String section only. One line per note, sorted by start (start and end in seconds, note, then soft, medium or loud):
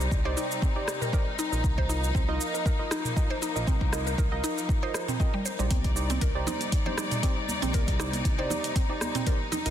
0.00 1.60 C3 medium
0.00 1.60 G3 medium
0.00 1.62 C4 medium
0.00 5.67 D#4 medium
1.64 5.67 F3 medium
1.64 5.67 A#3 medium
5.71 9.70 C3 medium
5.71 9.70 G3 medium
5.71 9.70 D#4 medium
5.71 9.70 D5 medium